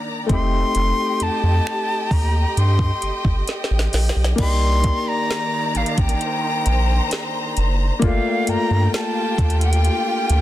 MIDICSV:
0, 0, Header, 1, 6, 480
1, 0, Start_track
1, 0, Tempo, 909091
1, 395, Time_signature, 4, 2, 24, 8
1, 5498, End_track
2, 0, Start_track
2, 0, Title_t, "Flute"
2, 0, Program_c, 0, 73
2, 167, Note_on_c, 0, 84, 115
2, 649, Note_on_c, 0, 81, 104
2, 657, Note_off_c, 0, 84, 0
2, 1125, Note_on_c, 0, 82, 98
2, 1133, Note_off_c, 0, 81, 0
2, 1365, Note_on_c, 0, 84, 91
2, 1373, Note_off_c, 0, 82, 0
2, 1840, Note_off_c, 0, 84, 0
2, 2323, Note_on_c, 0, 84, 118
2, 2684, Note_on_c, 0, 82, 110
2, 2692, Note_off_c, 0, 84, 0
2, 3046, Note_on_c, 0, 77, 91
2, 3053, Note_off_c, 0, 82, 0
2, 3163, Note_on_c, 0, 79, 98
2, 3171, Note_off_c, 0, 77, 0
2, 3999, Note_off_c, 0, 79, 0
2, 4247, Note_on_c, 0, 77, 104
2, 4485, Note_on_c, 0, 82, 111
2, 4493, Note_off_c, 0, 77, 0
2, 4720, Note_off_c, 0, 82, 0
2, 4724, Note_on_c, 0, 81, 105
2, 5059, Note_off_c, 0, 81, 0
2, 5085, Note_on_c, 0, 79, 100
2, 5498, Note_off_c, 0, 79, 0
2, 5498, End_track
3, 0, Start_track
3, 0, Title_t, "String section"
3, 0, Program_c, 1, 48
3, 0, Note_on_c, 1, 51, 84
3, 0, Note_on_c, 1, 74, 74
3, 0, Note_on_c, 1, 82, 89
3, 134, Note_off_c, 1, 82, 0
3, 138, Note_off_c, 1, 51, 0
3, 139, Note_off_c, 1, 74, 0
3, 154, Note_on_c, 1, 79, 86
3, 155, Note_on_c, 1, 67, 78
3, 155, Note_on_c, 1, 75, 76
3, 2294, Note_off_c, 1, 67, 0
3, 2294, Note_off_c, 1, 75, 0
3, 2294, Note_off_c, 1, 79, 0
3, 2317, Note_on_c, 1, 51, 84
3, 2317, Note_on_c, 1, 74, 78
3, 2317, Note_on_c, 1, 82, 92
3, 3267, Note_off_c, 1, 74, 0
3, 3275, Note_on_c, 1, 72, 75
3, 4217, Note_off_c, 1, 51, 0
3, 4217, Note_off_c, 1, 82, 0
3, 4226, Note_off_c, 1, 72, 0
3, 4235, Note_on_c, 1, 67, 80
3, 4235, Note_on_c, 1, 79, 95
3, 4236, Note_on_c, 1, 65, 79
3, 5498, Note_off_c, 1, 65, 0
3, 5498, Note_off_c, 1, 67, 0
3, 5498, Note_off_c, 1, 79, 0
3, 5498, End_track
4, 0, Start_track
4, 0, Title_t, "Grand piano"
4, 0, Program_c, 2, 0
4, 0, Control_c, 2, 64, 127
4, 0, Note_on_c, 2, 58, 66
4, 0, Note_on_c, 2, 62, 58
4, 0, Note_on_c, 2, 63, 59
4, 0, Note_on_c, 2, 67, 71
4, 128, Note_off_c, 2, 58, 0
4, 134, Note_off_c, 2, 62, 0
4, 139, Note_off_c, 2, 63, 0
4, 139, Note_on_c, 2, 57, 62
4, 146, Note_off_c, 2, 67, 0
4, 152, Note_on_c, 2, 60, 56
4, 163, Control_c, 2, 64, 0
4, 164, Note_on_c, 2, 63, 57
4, 176, Note_on_c, 2, 67, 70
4, 267, Control_c, 2, 64, 127
4, 2046, Note_off_c, 2, 57, 0
4, 2053, Note_off_c, 2, 60, 0
4, 2059, Note_off_c, 2, 63, 0
4, 2065, Note_off_c, 2, 67, 0
4, 2300, Note_on_c, 2, 58, 68
4, 2312, Note_on_c, 2, 62, 60
4, 2323, Control_c, 2, 64, 0
4, 2324, Note_on_c, 2, 63, 59
4, 2337, Note_on_c, 2, 67, 73
4, 2416, Control_c, 2, 64, 127
4, 4207, Note_off_c, 2, 58, 0
4, 4213, Note_off_c, 2, 62, 0
4, 4219, Note_off_c, 2, 63, 0
4, 4221, Note_on_c, 2, 58, 67
4, 4225, Note_off_c, 2, 67, 0
4, 4232, Note_on_c, 2, 62, 61
4, 4241, Control_c, 2, 64, 0
4, 4243, Note_on_c, 2, 65, 64
4, 4255, Note_on_c, 2, 57, 72
4, 4337, Control_c, 2, 64, 127
4, 5498, Note_off_c, 2, 57, 0
4, 5498, Note_off_c, 2, 58, 0
4, 5498, Note_off_c, 2, 62, 0
4, 5498, Note_off_c, 2, 65, 0
4, 5498, End_track
5, 0, Start_track
5, 0, Title_t, "Analog synth bass"
5, 0, Program_c, 3, 38
5, 156, Note_on_c, 3, 29, 100
5, 337, Note_off_c, 3, 29, 0
5, 399, Note_on_c, 3, 29, 108
5, 488, Note_off_c, 3, 29, 0
5, 639, Note_on_c, 3, 41, 50
5, 686, Note_off_c, 3, 41, 0
5, 757, Note_on_c, 3, 41, 99
5, 847, Note_off_c, 3, 41, 0
5, 1115, Note_on_c, 3, 39, 88
5, 1296, Note_off_c, 3, 39, 0
5, 1358, Note_on_c, 3, 43, 99
5, 1538, Note_off_c, 3, 43, 0
5, 1598, Note_on_c, 3, 31, 49
5, 1645, Note_off_c, 3, 31, 0
5, 1716, Note_on_c, 3, 31, 95
5, 1806, Note_off_c, 3, 31, 0
5, 1959, Note_on_c, 3, 33, 88
5, 2048, Note_off_c, 3, 33, 0
5, 2078, Note_on_c, 3, 34, 90
5, 2168, Note_off_c, 3, 34, 0
5, 2198, Note_on_c, 3, 35, 90
5, 2287, Note_off_c, 3, 35, 0
5, 2317, Note_on_c, 3, 36, 116
5, 2588, Note_off_c, 3, 36, 0
5, 3038, Note_on_c, 3, 33, 47
5, 3085, Note_off_c, 3, 33, 0
5, 3157, Note_on_c, 3, 33, 80
5, 3247, Note_off_c, 3, 33, 0
5, 3519, Note_on_c, 3, 34, 94
5, 3698, Note_off_c, 3, 34, 0
5, 3999, Note_on_c, 3, 30, 78
5, 4178, Note_off_c, 3, 30, 0
5, 4237, Note_on_c, 3, 31, 103
5, 4327, Note_off_c, 3, 31, 0
5, 4478, Note_on_c, 3, 43, 49
5, 4526, Note_off_c, 3, 43, 0
5, 4598, Note_on_c, 3, 43, 93
5, 4688, Note_off_c, 3, 43, 0
5, 4955, Note_on_c, 3, 39, 105
5, 5227, Note_off_c, 3, 39, 0
5, 5439, Note_on_c, 3, 38, 101
5, 5498, Note_off_c, 3, 38, 0
5, 5498, End_track
6, 0, Start_track
6, 0, Title_t, "Drums"
6, 155, Note_on_c, 9, 36, 104
6, 155, Note_on_c, 9, 42, 65
6, 208, Note_off_c, 9, 36, 0
6, 208, Note_off_c, 9, 42, 0
6, 395, Note_on_c, 9, 42, 68
6, 447, Note_off_c, 9, 42, 0
6, 634, Note_on_c, 9, 42, 71
6, 687, Note_off_c, 9, 42, 0
6, 881, Note_on_c, 9, 26, 113
6, 934, Note_off_c, 9, 26, 0
6, 1114, Note_on_c, 9, 36, 90
6, 1115, Note_on_c, 9, 46, 53
6, 1167, Note_off_c, 9, 36, 0
6, 1168, Note_off_c, 9, 46, 0
6, 1358, Note_on_c, 9, 42, 59
6, 1411, Note_off_c, 9, 42, 0
6, 1473, Note_on_c, 9, 36, 96
6, 1526, Note_off_c, 9, 36, 0
6, 1595, Note_on_c, 9, 42, 70
6, 1648, Note_off_c, 9, 42, 0
6, 1714, Note_on_c, 9, 36, 96
6, 1767, Note_off_c, 9, 36, 0
6, 1835, Note_on_c, 9, 42, 70
6, 1842, Note_on_c, 9, 38, 59
6, 1888, Note_off_c, 9, 42, 0
6, 1894, Note_off_c, 9, 38, 0
6, 1922, Note_on_c, 9, 38, 60
6, 1975, Note_off_c, 9, 38, 0
6, 2002, Note_on_c, 9, 38, 79
6, 2055, Note_off_c, 9, 38, 0
6, 2075, Note_on_c, 9, 46, 70
6, 2081, Note_on_c, 9, 38, 69
6, 2127, Note_off_c, 9, 46, 0
6, 2134, Note_off_c, 9, 38, 0
6, 2161, Note_on_c, 9, 38, 96
6, 2214, Note_off_c, 9, 38, 0
6, 2241, Note_on_c, 9, 38, 94
6, 2294, Note_off_c, 9, 38, 0
6, 2314, Note_on_c, 9, 42, 74
6, 2315, Note_on_c, 9, 36, 113
6, 2315, Note_on_c, 9, 49, 100
6, 2367, Note_off_c, 9, 42, 0
6, 2368, Note_off_c, 9, 36, 0
6, 2368, Note_off_c, 9, 49, 0
6, 2554, Note_on_c, 9, 42, 77
6, 2556, Note_on_c, 9, 36, 99
6, 2607, Note_off_c, 9, 42, 0
6, 2609, Note_off_c, 9, 36, 0
6, 2802, Note_on_c, 9, 38, 114
6, 2854, Note_off_c, 9, 38, 0
6, 3035, Note_on_c, 9, 42, 57
6, 3088, Note_off_c, 9, 42, 0
6, 3095, Note_on_c, 9, 42, 57
6, 3148, Note_off_c, 9, 42, 0
6, 3156, Note_on_c, 9, 36, 90
6, 3156, Note_on_c, 9, 42, 58
6, 3208, Note_off_c, 9, 42, 0
6, 3209, Note_off_c, 9, 36, 0
6, 3215, Note_on_c, 9, 42, 61
6, 3268, Note_off_c, 9, 42, 0
6, 3278, Note_on_c, 9, 42, 60
6, 3331, Note_off_c, 9, 42, 0
6, 3515, Note_on_c, 9, 42, 72
6, 3568, Note_off_c, 9, 42, 0
6, 3755, Note_on_c, 9, 42, 69
6, 3762, Note_on_c, 9, 38, 124
6, 3808, Note_off_c, 9, 42, 0
6, 3815, Note_off_c, 9, 38, 0
6, 3995, Note_on_c, 9, 42, 63
6, 4048, Note_off_c, 9, 42, 0
6, 4235, Note_on_c, 9, 42, 71
6, 4236, Note_on_c, 9, 36, 114
6, 4288, Note_off_c, 9, 36, 0
6, 4288, Note_off_c, 9, 42, 0
6, 4473, Note_on_c, 9, 42, 76
6, 4526, Note_off_c, 9, 42, 0
6, 4721, Note_on_c, 9, 38, 117
6, 4774, Note_off_c, 9, 38, 0
6, 4954, Note_on_c, 9, 36, 92
6, 4956, Note_on_c, 9, 42, 59
6, 5007, Note_off_c, 9, 36, 0
6, 5009, Note_off_c, 9, 42, 0
6, 5016, Note_on_c, 9, 42, 55
6, 5069, Note_off_c, 9, 42, 0
6, 5075, Note_on_c, 9, 42, 63
6, 5128, Note_off_c, 9, 42, 0
6, 5136, Note_on_c, 9, 42, 63
6, 5188, Note_off_c, 9, 42, 0
6, 5198, Note_on_c, 9, 42, 62
6, 5251, Note_off_c, 9, 42, 0
6, 5436, Note_on_c, 9, 42, 70
6, 5489, Note_off_c, 9, 42, 0
6, 5498, End_track
0, 0, End_of_file